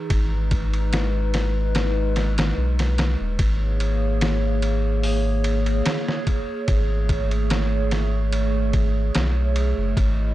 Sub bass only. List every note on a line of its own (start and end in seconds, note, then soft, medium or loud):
0.10 2.53 G#1 medium
2.58 3.16 B1 loud
3.21 3.37 D#1 loud
3.39 5.82 G#1 loud
6.68 9.11 G#1 loud
9.16 9.74 B1 loud
9.78 9.95 F#1 loud
9.97 10.34 G#1 loud